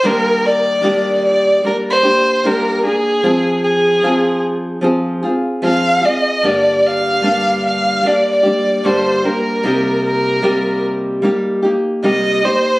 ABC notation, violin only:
X:1
M:4/4
L:1/16
Q:"Swing 16ths" 1/4=75
K:Eb
V:1 name="Violin"
B2 d4 d2 B c3 B2 A2- | A2 A4 z6 f2 e2 | d2 f4 f2 d d3 c2 B2- | B2 B4 z6 e2 c2 |]